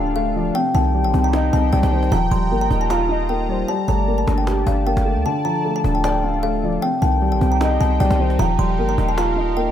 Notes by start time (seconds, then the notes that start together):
Already playing: D1 D3 F3 A3 D4 F4 A4 D5 F5 A5
0.16 A3 F5
0.36 F3 D5, cajon slap
0.55 C3 D#4 G4 C5 G5
0.75 C2 D#3 G5 A5, cajon bass
0.94 G3, cajon slap
1.01 A#1 G5, cajon slap
1.07 cajon slap
1.14 C2 C4, cajon bass
1.24 A#5
1.33 D#4 D#5, cajon slap
1.53 C2 C4 A5, cajon bass
1.73 C2 G3 D5 G5, cajon bass, cajon slap
1.83 C2, cajon bass, cajon slap
1.92 D#3 C5, cajon slap
2.03 cajon slap
2.12 D#1 F3 F4 D#5 G5 A#5, cajon bass
2.31 D#1 G3 C6, cajon bass
2.51 G1 A#3, cajon slap
2.61 A#5
2.71 D#1 D#4, cajon bass
2.81 A5
2.90 F4 F5 A#5, cajon slap
3.09 D#4 D#5, cajon slap
3.29 A#3 G5
3.49 G3 C5, cajon slap
3.68 G3 G4 D5 A5, cajon slap
3.88 G1 A3 D5 A#5, cajon bass
4.08 A#3
4.14 A5, cajon slap
4.21 cajon slap
4.27 G1 D4, cajon bass, cajon slap
4.38 G5
4.47 G4, cajon slap
4.67 G1 D4 F5, cajon bass
4.87 A#3 G5
4.97 G1, cajon bass, cajon slap
5.06 A3, cajon slap
5.16 D2
5.26 D3 F4 A4 A5
5.45 F3 A#5, cajon slap
5.65 A3, cajon slap
5.76 A5
5.84 D1 D4, cajon bass
5.95 G5
6.04 D5 G5 A5, cajon slap
6.23 D4 F5, cajon slap
6.43 A3 F5
6.63 F3 D5, cajon slap
6.82 C3 D#4 G4 C5 G5
7.02 C2 D#3 G5 A5, cajon bass
7.22 G3, cajon slap
7.28 A#1 G5, cajon slap
7.35 cajon slap
7.41 C2 C4, cajon bass
7.52 A#5
7.61 D#4 D#5, cajon slap
7.80 C2 C4 A5, cajon bass
8.00 C2 G3 D5 G5, cajon bass, cajon slap
8.11 C2, cajon bass, cajon slap
8.19 D#3 C5, cajon slap
8.30 cajon slap
8.39 D#1 F3 G4 A#4 F5 G5 A#5, cajon bass
8.59 D#1 G3 C6, cajon bass
8.79 G1 A#3, cajon slap
8.89 A#5
8.98 D#1 D#4, cajon bass
9.09 A5
9.17 F4 F5 A#5, cajon slap
9.37 D#4 D#5, cajon slap
9.57 A#3 G5